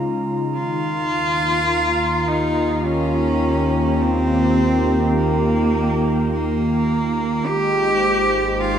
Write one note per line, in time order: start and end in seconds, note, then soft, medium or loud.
0.00 0.49 C#2 medium
0.00 0.54 C#3 medium
0.00 0.54 G#3 medium
0.00 3.30 D#4 medium
0.00 8.79 F4 medium
0.00 7.48 A#5 medium
0.52 7.41 D#2 medium
0.52 7.46 D#3 medium
0.52 2.30 F4 loud
1.26 8.79 A#3 medium
2.13 8.79 G4 medium
2.28 2.87 D#4 medium
2.86 4.03 C#4 medium
4.01 5.18 C4 loud
5.16 6.31 A#3 medium
6.33 7.48 A#3 medium
7.44 8.79 G#1 medium
7.44 8.79 G#3 medium
7.44 8.62 G4 loud
7.44 8.79 G5 medium
7.69 8.79 D#4 medium
7.78 8.79 C5 medium
8.60 8.79 F4 loud
8.71 8.79 A#4 medium